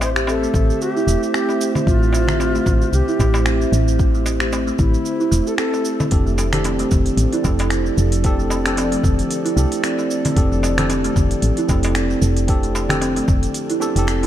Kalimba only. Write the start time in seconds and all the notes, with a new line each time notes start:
0.16 G4
0.28 C4
0.43 A3
0.54 A3
0.96 E4
1.08 A3
1.34 C4
1.49 C4
2.01 A3
2.28 G4
2.40 C4
2.55 A3
2.67 A3
3.08 E4
3.20 A3
3.47 C4
3.62 C4
4.15 A3
4.41 G4
4.53 C4
4.67 A3
4.78 A3
5.20 E4
5.31 A3
5.58 C4
5.74 C4
6.26 A3
6.53 G4
6.65 C4
6.80 A3
6.91 A3
7.33 E4
7.44 A3
7.71 C4
7.86 C4
8.39 A3
8.66 G4
8.78 C4
8.92 A3
9.04 A3
9.45 E4
9.57 A3
9.83 C4
9.98 C4
10.52 A3
10.78 G4
10.90 C4
11.04 A3
11.16 A3
11.58 E4
11.69 A3
11.96 C4
12.11 C4
12.64 A3
12.90 G4
13.02 C4
13.17 A3
13.28 A3
13.70 E4
13.81 B3
13.96 D4
14.07 C4
14.23 E4